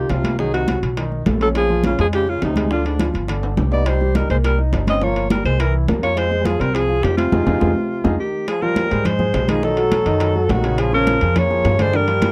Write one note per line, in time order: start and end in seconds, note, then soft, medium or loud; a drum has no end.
0.00 0.11 D#3 medium
0.00 0.19 F4 medium
0.00 0.11 G4 medium
0.00 0.20 F5 medium
0.09 0.77 C2 medium
0.09 0.38 C3 medium
0.09 0.39 F4 medium
0.09 high bongo medium
0.09 low bongo medium
0.09 high conga soft
0.09 high timbale medium
0.09 low timbale medium
0.24 0.37 A#3 medium
0.24 0.37 A#4 medium
0.24 high conga medium
0.24 high timbale medium
0.38 0.63 D#3 medium
0.38 0.52 F#3 medium
0.38 0.63 D#4 medium
0.38 0.53 G#4 medium
0.38 high bongo medium
0.38 high conga soft
0.53 0.81 C3 medium
0.53 0.81 F#4 medium
0.53 high bongo soft
0.53 high conga soft
0.53 high timbale medium
0.68 0.92 F#3 medium
0.68 0.92 F#4 medium
0.68 high bongo medium
0.68 high conga medium
0.68 high timbale medium
0.68 low timbale medium
0.83 1.23 B1 medium
0.83 high bongo soft
0.83 high conga soft
0.83 high timbale medium
0.97 1.21 D#3 medium
0.97 1.21 D#4 medium
0.97 high bongo medium
0.97 high conga soft
0.97 high timbale medium
1.12 high conga soft
1.26 1.93 A#1 medium
1.26 1.38 A3 medium
1.26 1.38 A4 medium
1.26 high bongo medium
1.26 low bongo medium
1.26 high conga medium
1.26 high timbale medium
1.26 low timbale medium
1.41 1.48 F#3 medium
1.41 1.64 C#4 medium
1.41 1.48 A4 loud
1.41 1.65 C#5 medium
1.41 high bongo soft
1.41 high timbale medium
1.55 1.82 F3 medium
1.55 1.83 G#4 loud
1.55 high bongo medium
1.55 high conga soft
1.55 high timbale medium
1.70 1.81 F3 medium
1.70 1.82 F4 medium
1.70 high bongo soft
1.70 high conga soft
1.84 1.98 C#3 medium
1.84 1.96 C#4 medium
1.84 1.98 F4 medium
1.84 1.96 C#5 medium
1.84 high bongo medium
1.84 high conga medium
1.84 high timbale medium
1.84 low timbale medium
1.99 2.39 F2 medium
1.99 2.05 F3 medium
1.99 2.22 G#3 medium
1.99 2.23 G#4 medium
1.99 2.07 G#4 medium
1.99 high bongo soft
1.99 high conga soft
1.99 high timbale medium
2.13 2.29 C#3 medium
2.13 2.31 G4 medium
2.13 high bongo medium
2.13 high conga soft
2.13 high timbale medium
2.27 2.42 C#3 medium
2.27 2.52 C#4 medium
2.27 2.43 F4 medium
2.27 2.52 C#5 medium
2.27 high bongo soft
2.27 high conga soft
2.42 3.09 D2 medium
2.42 2.69 C3 medium
2.42 2.70 D#4 medium
2.42 high bongo medium
2.42 low bongo medium
2.42 high conga soft
2.42 high timbale medium
2.42 low timbale medium
2.56 2.68 G#3 medium
2.56 2.69 G#4 medium
2.56 high conga medium
2.56 high timbale medium
2.70 2.95 D3 medium
2.70 2.84 D3 medium
2.70 2.95 D4 medium
2.70 2.85 F4 medium
2.70 high bongo medium
2.70 high conga soft
2.85 3.12 G#2 medium
2.85 3.13 D4 medium
2.85 high bongo soft
2.85 high conga soft
2.85 high timbale medium
2.99 3.24 F3 medium
2.99 3.24 F4 medium
2.99 high bongo medium
2.99 high conga medium
2.99 high timbale medium
2.99 low timbale medium
3.14 3.54 G1 medium
3.14 high bongo soft
3.14 high conga soft
3.14 high timbale medium
3.28 3.52 D3 medium
3.28 3.53 D4 medium
3.28 high bongo medium
3.28 high conga soft
3.28 high timbale medium
3.43 high conga soft
3.43 high timbale medium
3.57 4.24 C2 medium
3.57 3.69 G3 medium
3.57 3.69 G4 medium
3.57 high bongo medium
3.57 low bongo medium
3.57 high conga medium
3.57 high timbale medium
3.72 3.88 B3 medium
3.72 3.96 D#4 medium
3.72 3.89 D5 medium
3.72 3.96 D#5 medium
3.72 high bongo soft
3.72 low timbale medium
3.86 4.16 G3 medium
3.86 4.18 C5 medium
3.86 high bongo medium
3.86 high conga soft
3.86 high timbale medium
4.01 4.13 G3 medium
4.01 4.13 G4 medium
4.01 high bongo soft
4.01 high conga soft
4.15 4.30 G3 medium
4.15 4.27 D#4 medium
4.15 4.30 A#4 medium
4.15 4.27 D#5 medium
4.15 high bongo medium
4.15 high conga medium
4.15 high timbale medium
4.15 low timbale medium
4.30 4.70 C2 medium
4.30 4.37 G#3 medium
4.30 4.53 A#3 medium
4.30 4.53 A#4 medium
4.30 4.37 C5 medium
4.30 high bongo soft
4.30 high conga soft
4.30 high timbale medium
4.44 4.58 G3 medium
4.44 4.58 A#4 medium
4.44 high bongo medium
4.44 high conga soft
4.44 high timbale medium
4.58 4.82 D#4 medium
4.58 4.82 D#5 medium
4.58 high bongo soft
4.58 high conga soft
4.73 5.39 G1 medium
4.73 high bongo medium
4.73 low bongo medium
4.73 high conga soft
4.73 high timbale medium
4.73 low timbale medium
4.87 5.04 C4 medium
4.87 4.99 C#4 medium
4.87 4.99 C#5 medium
4.87 5.05 D#5 medium
4.87 high conga medium
4.87 high timbale medium
5.02 5.26 F3 medium
5.02 5.30 A#3 medium
5.02 5.26 F4 medium
5.02 5.31 C#5 medium
5.02 high bongo medium
5.02 high conga soft
5.16 high bongo soft
5.16 high conga soft
5.16 high timbale medium
5.30 5.44 G3 medium
5.30 5.54 A#3 medium
5.30 5.54 A#4 medium
5.30 5.44 A#4 medium
5.30 high bongo medium
5.30 high conga medium
5.30 high timbale medium
5.30 low timbale medium
5.45 5.85 C2 medium
5.45 5.61 G#3 medium
5.45 5.62 C5 medium
5.45 high bongo soft
5.45 high conga soft
5.45 high timbale medium
5.59 5.83 E3 medium
5.59 5.74 E3 medium
5.59 5.83 E4 medium
5.59 5.74 A#4 medium
5.59 high bongo medium
5.59 high conga soft
5.59 high timbale medium
5.74 high conga soft
5.88 6.55 F2 medium
5.88 6.00 A#3 medium
5.88 6.00 A#4 medium
5.88 high bongo medium
5.88 low bongo medium
5.88 high conga medium
5.88 high timbale medium
5.88 low timbale medium
6.03 6.18 A#3 medium
6.03 6.27 F4 medium
6.03 6.20 C#5 loud
6.03 6.27 F5 medium
6.03 high bongo soft
6.03 high timbale medium
6.17 6.47 G#3 medium
6.17 6.47 C5 loud
6.17 high bongo medium
6.17 high conga soft
6.17 high timbale medium
6.31 6.43 G#3 medium
6.31 6.43 G#4 medium
6.31 high bongo soft
6.31 high conga soft
6.45 6.61 F3 medium
6.45 6.57 F4 medium
6.45 6.62 G#4 medium
6.45 6.57 F5 medium
6.45 high bongo medium
6.45 high conga medium
6.45 high timbale medium
6.45 low timbale medium
6.60 7.00 C2 medium
6.60 6.75 G3 medium
6.60 6.84 C4 medium
6.60 6.76 A#4 medium
6.60 6.84 C5 medium
6.60 high bongo soft
6.60 high conga soft
6.60 high timbale medium
6.74 7.04 F3 medium
6.74 7.04 G#4 medium
6.74 high bongo medium
6.74 high conga soft
6.74 high timbale medium
6.89 7.12 F4 medium
6.89 7.13 F5 medium
6.89 high bongo soft
6.89 high conga soft
7.03 7.30 F2 medium
7.03 7.16 D#3 medium
7.03 7.16 G4 medium
7.03 high bongo medium
7.03 low bongo medium
7.03 high conga soft
7.03 high timbale medium
7.03 low timbale medium
7.17 8.14 C3 medium
7.17 7.30 C4 medium
7.17 8.14 F4 medium
7.17 7.30 C5 medium
7.17 high conga medium
7.17 high timbale medium
7.32 7.43 F2 medium
7.32 7.41 D#4 medium
7.32 7.42 F4 medium
7.32 7.42 G#4 medium
7.32 low bongo medium
7.32 high conga medium
7.32 high timbale medium
7.46 7.58 F2 medium
7.46 7.56 D#4 medium
7.46 7.56 F4 medium
7.46 7.56 G#4 medium
7.46 low bongo medium
7.46 high conga medium
7.46 high timbale medium
7.60 7.72 F2 medium
7.60 7.70 D#4 medium
7.60 7.70 F4 medium
7.60 7.70 G#4 medium
7.60 low bongo medium
7.60 high conga medium
7.60 high timbale medium
8.04 8.15 F2 medium
8.04 8.14 D#4 medium
8.04 8.14 F4 medium
8.04 8.14 G#4 medium
8.04 low bongo medium
8.04 high conga medium
8.04 high timbale medium
8.19 8.46 D#3 medium
8.19 8.46 G4 medium
8.48 8.65 F3 medium
8.48 8.64 G#4 medium
8.48 high bongo medium
8.48 high conga soft
8.48 high timbale medium
8.62 8.86 F3 medium
8.62 9.08 G3 medium
8.62 8.86 F4 medium
8.62 9.08 A#4 medium
8.62 8.86 F5 medium
8.62 high bongo soft
8.62 high conga soft
8.76 high bongo medium
8.76 high conga medium
8.76 high timbale medium
8.76 low timbale medium
8.91 9.32 G#2 medium
8.91 9.14 G#3 medium
8.91 9.15 G#4 medium
8.91 9.15 C5 medium
8.91 high bongo soft
8.91 high conga soft
8.91 high timbale medium
9.05 9.51 G#3 medium
9.05 9.51 C5 medium
9.05 high bongo medium
9.05 high conga soft
9.05 low conga medium
9.05 high timbale medium
9.19 9.43 G#3 medium
9.19 9.43 G#4 medium
9.19 9.44 C5 medium
9.19 high bongo soft
9.19 high conga soft
9.19 low conga medium
9.34 10.01 B1 medium
9.34 high bongo medium
9.34 low bongo medium
9.34 high conga soft
9.34 high timbale medium
9.34 low timbale medium
9.48 9.60 D#3 medium
9.48 9.63 F3 medium
9.48 9.60 D#4 medium
9.48 9.64 G#4 medium
9.48 9.61 D#5 medium
9.48 high conga medium
9.48 high timbale loud
9.63 9.75 D#3 medium
9.63 10.53 F#3 medium
9.63 9.75 D#4 medium
9.63 10.53 A4 loud
9.63 9.75 D#5 medium
9.63 high bongo medium
9.63 high conga soft
9.77 10.01 F#3 medium
9.77 10.01 F#4 medium
9.77 10.02 A4 medium
9.77 high bongo soft
9.77 high conga soft
9.77 high timbale medium
9.92 high bongo medium
9.92 high conga medium
9.92 high timbale medium
9.92 low timbale medium
10.06 10.46 F#2 medium
10.06 10.30 D#3 medium
10.06 10.30 D#4 medium
10.06 10.30 D#5 medium
10.06 high bongo soft
10.06 high conga soft
10.06 high timbale medium
10.20 high bongo medium
10.20 high conga soft
10.20 high timbale medium
10.35 10.59 F#3 medium
10.35 10.59 F#4 medium
10.35 10.59 A4 medium
10.35 high conga soft
10.49 11.16 A#1 medium
10.49 10.81 D#3 medium
10.49 10.81 F#4 medium
10.49 high bongo medium
10.49 low bongo medium
10.49 high conga medium
10.49 high timbale medium
10.49 low timbale medium
10.63 10.87 C#3 medium
10.63 10.87 C#4 medium
10.63 10.88 C#5 medium
10.63 high bongo soft
10.63 high timbale medium
10.78 10.93 F3 medium
10.78 10.93 G#4 medium
10.78 high bongo medium
10.78 high conga soft
10.78 high timbale medium
10.93 11.16 C#3 medium
10.93 11.38 F3 medium
10.93 11.17 C#4 medium
10.93 11.39 A#4 loud
10.93 11.17 C#5 medium
10.93 high bongo soft
10.93 high conga soft
11.07 high bongo medium
11.07 high conga medium
11.07 high timbale medium
11.07 low timbale medium
11.21 11.62 F2 medium
11.21 11.45 F3 medium
11.21 11.45 F4 medium
11.21 11.45 G#4 medium
11.21 high bongo soft
11.21 high conga soft
11.21 high timbale medium
11.36 11.81 A#3 medium
11.36 11.83 C#5 loud
11.36 high bongo medium
11.36 high conga soft
11.36 low conga medium
11.36 high timbale medium
11.50 11.74 F3 medium
11.50 11.74 F4 medium
11.50 11.74 G#4 medium
11.50 high bongo soft
11.50 high conga soft
11.65 12.31 G2 medium
11.65 high bongo medium
11.65 low bongo medium
11.65 high conga soft
11.65 high timbale medium
11.65 low timbale medium
11.79 11.91 D3 medium
11.79 11.95 G#3 medium
11.79 11.91 D4 medium
11.79 11.98 C5 loud
11.79 11.91 D5 medium
11.79 high conga medium
11.79 high timbale medium
11.94 12.05 D3 medium
11.94 12.32 G3 medium
11.94 12.06 D4 medium
11.94 12.32 A#4 medium
11.94 12.06 D5 medium
11.94 high bongo medium
11.94 high conga soft
12.07 12.31 F3 medium
12.07 12.32 F4 medium
12.07 12.32 G4 medium
12.07 high bongo soft
12.07 high conga soft
12.07 high timbale medium
12.22 high bongo medium
12.22 high conga medium
12.22 high timbale medium
12.22 low timbale medium